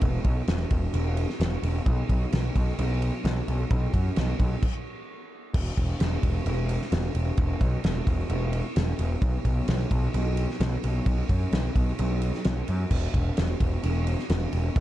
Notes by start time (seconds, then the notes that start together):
0.01 E1, kick, ride
0.24 B1, kick, ride
0.48 E1, snare, ride
0.70 E1, kick, ride
0.94 E1, ride
1.17 ride
1.30 snare
1.40 E1, snare, ride
1.63 E1, ride
1.86 B1, kick, ride
2.09 B1, kick, ride
2.32 B1, snare, ride
2.55 B1, kick, ride
2.79 B1, ride
3.02 ride
3.25 B1, snare, ride
3.48 B1, ride
3.71 B1, kick, ride
3.93 F#2, kick, ride
4.16 B1, snare, ride
4.39 B1, kick, ride
4.62 kick, crash
5.54 E1, kick, crash
5.77 E1, kick, ride
6.00 E1, snare, ride
6.23 E1, kick, ride
6.46 E1, ride
6.69 ride
6.82 snare
6.92 E1, snare, ride
7.14 E1, ride
7.37 E1, kick, ride
7.61 B1, kick, ride
7.84 E1, snare, ride
8.07 E1, kick, ride
8.30 E1, ride
8.53 ride
8.76 E1, snare, ride
8.99 E1, ride
9.22 B1, kick, ride
9.45 B1, kick, ride
9.68 B1, snare, ride
9.91 B1, kick, ride
10.14 B1, ride
10.37 ride
10.50 snare
10.60 B1, snare, ride
10.84 B1, ride
11.06 B1, kick, ride
11.29 F#2, kick, ride
11.52 B1, snare, ride
11.75 B1, kick, ride
11.99 B1, ride
12.22 ride
12.34 snare
12.44 B1, snare, ride
12.68 F#2, ride
12.90 E1, kick, crash
13.13 E1, kick, ride
13.37 E1, snare, ride
13.60 E1, kick, ride
13.83 E1, ride
14.07 ride
14.19 snare
14.29 E1, snare, ride
14.53 E1, ride
14.76 E1, kick, ride